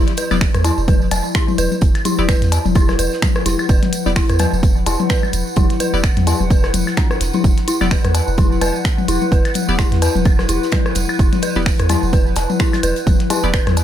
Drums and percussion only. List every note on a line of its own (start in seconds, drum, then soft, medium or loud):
0.07 snare soft
0.07 closed hi-hat soft
0.07 tambourine soft
0.17 closed hi-hat medium
0.17 tambourine medium
0.31 snare medium
0.31 high tom medium
0.31 tambourine soft
0.31 high woodblock medium
0.41 finger snap loud
0.41 kick loud
0.41 snare loud
0.41 open hi-hat medium
0.41 tambourine medium
0.54 cross-stick medium
0.54 closed hi-hat soft
0.54 high tom soft
0.54 tambourine soft
0.64 closed hi-hat medium
0.64 tambourine medium
0.64 cowbell medium
0.78 tambourine soft
0.88 kick loud
0.88 closed hi-hat medium
0.88 high tom medium
0.88 tambourine medium
1.02 tambourine soft
1.11 closed hi-hat medium
1.11 high tom soft
1.11 tambourine medium
1.11 cowbell medium
1.11 high woodblock medium
1.25 tambourine soft
1.35 finger snap loud
1.35 kick loud
1.35 snare loud
1.35 closed hi-hat medium
1.35 tambourine medium
1.48 high tom medium
1.48 tambourine soft
1.58 closed hi-hat medium
1.58 tambourine loud
1.72 high tom soft
1.72 tambourine soft
1.81 kick loud
1.81 closed hi-hat medium
1.81 tambourine medium
1.95 snare soft
1.95 closed hi-hat soft
1.95 tambourine soft
1.95 high woodblock medium
2.05 closed hi-hat medium
2.05 high tom medium
2.05 tambourine medium
2.18 tambourine soft
2.28 finger snap loud
2.28 kick loud
2.28 snare loud
2.28 closed hi-hat medium
2.28 high tom soft
2.28 tambourine medium
2.42 snare medium
2.42 closed hi-hat soft
2.42 tambourine soft
2.52 closed hi-hat medium
2.52 closed hi-hat loud
2.52 tambourine loud
2.52 cowbell medium
2.65 high tom medium
2.65 tambourine soft
2.75 kick loud
2.75 closed hi-hat medium
2.75 tambourine medium
2.75 high woodblock medium
2.89 cross-stick medium
2.89 snare medium
2.89 high tom soft
2.89 tambourine soft
2.99 closed hi-hat medium
2.99 tambourine loud
3.12 snare medium
3.12 tambourine soft
3.22 finger snap loud
3.22 kick loud
3.22 snare loud
3.22 closed hi-hat medium
3.22 high tom medium
3.22 tambourine medium
3.35 cross-stick medium
3.35 tambourine soft
3.46 snare medium
3.46 closed hi-hat loud
3.46 closed hi-hat medium
3.46 high tom soft
3.46 tambourine loud
3.59 tambourine soft
3.59 high woodblock medium
3.69 kick loud
3.69 closed hi-hat medium
3.69 tambourine medium
3.82 snare soft
3.82 closed hi-hat soft
3.82 high tom medium
3.82 tambourine soft
3.93 closed hi-hat loud
3.93 closed hi-hat medium
3.93 tambourine medium
4.06 snare medium
4.06 high tom soft
4.06 tambourine soft
4.16 finger snap loud
4.16 kick loud
4.16 snare loud
4.16 open hi-hat medium
4.16 tambourine medium
4.29 cross-stick medium
4.29 closed hi-hat soft
4.29 tambourine soft
4.39 closed hi-hat loud
4.39 closed hi-hat medium
4.39 high tom medium
4.39 tambourine loud
4.39 cowbell medium
4.39 high woodblock medium
4.53 tambourine soft
4.63 kick loud
4.63 closed hi-hat medium
4.63 high tom soft
4.63 tambourine medium
4.77 tambourine soft
4.86 closed hi-hat medium
4.86 closed hi-hat loud
4.86 tambourine loud
4.86 cowbell loud
5.00 high tom medium
5.00 tambourine soft
5.09 finger snap loud
5.09 kick loud
5.09 snare loud
5.09 closed hi-hat medium
5.09 tambourine medium
5.23 high tom soft
5.23 tambourine soft
5.23 high woodblock medium
5.33 closed hi-hat medium
5.33 tambourine loud
5.47 tambourine soft
5.56 kick loud
5.56 closed hi-hat medium
5.56 high tom medium
5.56 tambourine medium
5.69 snare soft
5.69 closed hi-hat soft
5.69 tambourine soft
5.80 closed hi-hat loud
5.80 closed hi-hat medium
5.80 high tom soft
5.80 tambourine loud
5.94 tambourine soft
6.04 finger snap loud
6.04 kick loud
6.04 snare loud
6.04 closed hi-hat medium
6.04 tambourine medium
6.04 high woodblock medium
6.17 snare medium
6.17 closed hi-hat soft
6.17 high tom medium
6.17 tambourine soft
6.27 closed hi-hat medium
6.27 closed hi-hat loud
6.27 tambourine loud
6.27 cowbell medium
6.40 high tom soft
6.40 tambourine soft
6.50 kick loud
6.50 closed hi-hat medium
6.50 tambourine medium
6.63 cross-stick medium
6.63 snare medium
6.63 tambourine soft
6.74 closed hi-hat loud
6.74 closed hi-hat medium
6.74 high tom medium
6.74 tambourine medium
6.87 snare medium
6.87 tambourine soft
6.87 high woodblock medium
6.97 finger snap medium
6.97 kick loud
6.97 snare loud
6.97 closed hi-hat medium
6.97 high tom soft
6.97 tambourine medium
7.11 cross-stick medium
7.11 tambourine soft
7.21 snare medium
7.21 closed hi-hat loud
7.21 closed hi-hat medium
7.21 tambourine medium
7.33 high tom medium
7.33 tambourine soft
7.44 kick loud
7.44 closed hi-hat medium
7.44 high tom soft
7.44 tambourine medium
7.57 snare soft
7.57 closed hi-hat soft
7.57 tambourine soft
7.68 closed hi-hat medium
7.68 tambourine medium
7.81 snare soft
7.81 high tom medium
7.81 tambourine soft
7.81 high woodblock medium
7.91 finger snap medium
7.91 kick loud
7.91 snare loud
7.91 open hi-hat medium
7.91 tambourine medium
8.04 cross-stick medium
8.04 closed hi-hat soft
8.04 high tom soft
8.04 tambourine soft
8.14 closed hi-hat medium
8.14 closed hi-hat loud
8.14 tambourine loud
8.14 cowbell medium
8.28 tambourine soft
8.38 kick loud
8.38 closed hi-hat medium
8.38 high tom medium
8.38 tambourine medium
8.52 tambourine soft
8.61 closed hi-hat medium
8.61 high tom soft
8.61 tambourine loud
8.61 cowbell medium
8.61 high woodblock medium
8.76 tambourine soft
8.85 finger snap medium
8.85 kick loud
8.85 snare loud
8.85 closed hi-hat medium
8.85 tambourine medium
8.98 high tom medium
8.98 tambourine soft
9.08 closed hi-hat medium
9.08 tambourine medium
9.22 high tom soft
9.22 tambourine soft
9.32 kick loud
9.32 closed hi-hat medium
9.32 tambourine soft
9.45 snare soft
9.45 closed hi-hat soft
9.45 tambourine soft
9.45 high woodblock medium
9.54 closed hi-hat medium
9.54 high tom medium
9.54 tambourine medium
9.68 tambourine soft
9.79 finger snap medium
9.79 kick loud
9.79 snare loud
9.79 closed hi-hat medium
9.79 high tom soft
9.79 tambourine medium
9.92 snare medium
9.92 closed hi-hat soft
9.92 tambourine soft
10.02 closed hi-hat medium
10.02 tambourine medium
10.02 cowbell medium
10.15 high tom medium
10.15 tambourine soft
10.25 kick loud
10.25 closed hi-hat medium
10.25 tambourine soft
10.25 high woodblock medium
10.39 cross-stick medium
10.39 snare medium
10.39 high tom soft
10.39 tambourine soft
10.48 closed hi-hat medium
10.48 tambourine medium
10.63 snare medium
10.63 tambourine soft
10.72 finger snap medium
10.72 kick loud
10.72 snare loud
10.72 closed hi-hat medium
10.72 high tom medium
10.72 tambourine medium
10.86 cross-stick medium
10.86 tambourine soft
10.95 snare medium
10.95 closed hi-hat medium
10.95 high tom soft
10.95 tambourine medium
11.09 tambourine soft
11.09 high woodblock medium
11.19 kick loud
11.19 closed hi-hat medium
11.19 tambourine medium
11.33 snare soft
11.33 closed hi-hat soft
11.33 high tom medium
11.33 tambourine soft
11.42 closed hi-hat medium
11.42 tambourine medium
11.55 snare soft
11.55 high tom soft
11.55 tambourine soft
11.66 finger snap loud
11.66 kick loud
11.66 snare loud
11.66 open hi-hat medium
11.66 tambourine medium
11.79 cross-stick medium
11.79 closed hi-hat soft
11.79 tambourine soft
11.89 closed hi-hat medium
11.89 high tom medium
11.89 tambourine medium
11.89 cowbell medium
11.89 high woodblock medium
12.03 tambourine soft
12.13 kick loud
12.13 closed hi-hat medium
12.13 high tom soft
12.13 tambourine soft
12.26 tambourine soft
12.36 snare loud
12.36 closed hi-hat medium
12.36 tambourine medium
12.36 cowbell medium
12.50 high tom medium
12.50 tambourine soft
12.59 finger snap medium
12.59 kick loud
12.59 closed hi-hat medium
12.59 tambourine medium
12.73 snare loud
12.73 closed hi-hat medium
12.73 high tom soft
12.73 tambourine soft
12.73 high woodblock medium
12.83 closed hi-hat medium
12.83 tambourine medium
12.96 closed hi-hat medium
12.96 tambourine soft
13.07 kick loud
13.07 closed hi-hat medium
13.07 high tom medium
13.07 tambourine soft
13.20 snare soft
13.20 closed hi-hat soft
13.20 tambourine soft
13.30 closed hi-hat medium
13.30 high tom soft
13.30 tambourine medium
13.30 cowbell medium
13.44 tambourine soft
13.54 finger snap loud
13.54 kick loud
13.54 snare loud
13.54 closed hi-hat medium
13.54 tambourine medium
13.54 high woodblock medium
13.67 cross-stick medium
13.67 snare medium
13.67 closed hi-hat soft
13.67 high tom medium
13.67 tambourine soft
13.77 closed hi-hat medium
13.77 tambourine loud
13.77 cowbell medium